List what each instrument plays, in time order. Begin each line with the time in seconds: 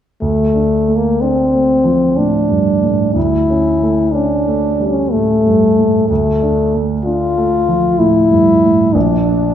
0.21 grand piano D2, french horn A3
0.54 grand piano D4
0.88 grand piano A3
0.96 french horn A#3
1.21 french horn C4, grand piano D4
1.53 grand piano A3
1.84 grand piano F3
2.17 grand piano A2, french horn D4
2.50 grand piano G2
2.83 grand piano A2
3.15 grand piano D2, french horn E4
3.50 grand piano C#4
3.82 grand piano A3
4.13 grand piano C#4, french horn D4
4.48 grand piano A3
4.80 grand piano G3
4.88 french horn C#4
5.12 grand piano A2, french horn A3
5.46 grand piano G2
5.79 grand piano A2
6.08 grand piano D2, french horn A3
6.42 grand piano D4
6.74 grand piano A3
7.04 grand piano D4, french horn F4
7.37 grand piano A3
7.69 grand piano F3
7.99 grand piano A2, french horn E4
8.30 grand piano G2
8.63 grand piano A2
8.93 grand piano A#1, french horn D4
9.27 grand piano D4